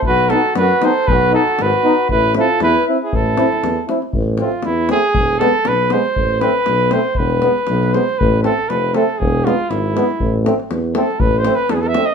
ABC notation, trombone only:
X:1
M:2/4
L:1/8
Q:"Swing 16ths" 1/4=118
K:none
V:1 name="Trombone"
z ^D z D | z ^D z D | z E z E | z E z E |
z C z C | z B, z B, | z C z C | z B, z B, |
z C z C | z B, z B, | z C z C | z C z C |]